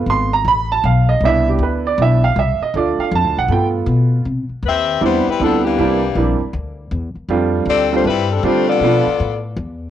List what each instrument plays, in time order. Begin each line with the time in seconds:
Already playing: upright piano A3 B3 F4
0.06 upright bass G#1, upright piano C6
0.33 upright piano A#5
0.44 upright bass A1, upright piano B5
0.72 upright piano A5
0.84 upright bass B1, upright piano F5
1.09 upright piano D#5
1.20 upright bass C2, upright piano B3 D4
1.25 upright piano E4 E5
1.49 upright piano G4
1.59 upright bass D2
1.63 upright piano B4
1.87 upright piano D5
1.98 upright bass B1, upright piano B3 D4 E4
2.02 upright piano E5
2.24 upright piano F5
2.36 upright bass C2, upright piano E5
2.60 upright piano D#5, muted upright bass stroke
2.74 upright bass D2, upright piano A3 D4 F4 D5
2.98 upright piano F5, muted upright bass stroke
3.12 upright bass F2, upright piano A5
3.24 upright bass D2
3.37 upright bass B1, upright piano F#5
3.48 upright bass G2, upright piano A3 B3 F4 G5
3.86 upright bass B2
4.25 upright bass C3
4.49 muted upright bass stroke
4.63 upright bass D#2
4.67 saxophone section C4 G4 B4 E5
5.01 upright bass E2, upright piano G3 B3 C4 D4 E4, saxophone section G3 B3 E4 C5
5.27 saxophone section G3 C4 E4 B4, muted upright bass stroke
5.40 upright bass D2, saxophone section F3 B3 D4 A4, upright piano G3 B3 C4 D4 E4
5.65 saxophone section E3 A#3 D4 G4
5.78 upright bass C2, upright piano G3 A#3 C4 D4 E4
6.15 upright bass A#1, upright piano G3 A#3 C4 D4 E4
6.41 muted upright bass stroke
6.53 upright bass D2
6.91 upright bass E2
7.15 muted upright bass stroke
7.29 upright bass F2, upright piano G3 A3 C4 D4 F4
7.66 upright bass D2, saxophone section C4 G4 A4 D5
7.92 upright piano G3 A3 C4 D4 F4, saxophone section A3 D4 G4 C5
8.04 upright bass G2, saxophone section G3 C4 E4 B4
8.32 saxophone section G3 C4 D4 A4
8.43 upright bass D3, upright piano G3 A3 C4 D4 F4, saxophone section A3 D4 G4 C5
8.68 saxophone section B3 F4 A4 D5
8.80 upright bass B2, upright piano F3 A3 B3 D4 F4
9.06 muted upright bass stroke
9.20 upright bass A2
9.56 upright bass E2